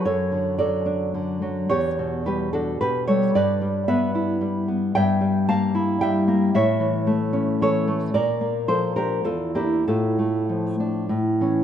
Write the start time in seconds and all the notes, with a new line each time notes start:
0.05 F#2 A4 C#5
0.32 D3
0.58 F#3 A4 D5
0.86 D4
1.14 D3
1.42 F#3
1.70 E2 G4 C#5
1.99 B2
2.26 G3 G4 B4
2.53 D4 F#4 A4
2.81 B2 G4 B4
3.08 G3 A4 C#5
3.35 G2 B4 D5
3.61 G3
3.88 B3 B4 E5
4.15 E4
4.41 G3
4.68 B3
4.95 G2 E5 G5
5.21 G3
5.49 A#3 F5 A5
5.75 E4
6.01 G3 E5 G5
6.28 A#3
6.54 A2 C#5 E5
6.80 E3
7.07 A3
7.33 C#4
7.61 E3 A4 C#5
7.87 A3
8.14 A#2 A#4 D5
8.41 A#3
8.68 F3 A4 C5
8.96 D4 G4 A#4
9.24 E2 F4 A4
9.55 A#3 D4 E4 G4
9.87 A2 F4 A4
10.19 A3
10.49 F3
10.80 D4
11.09 A2
11.41 E3 C#4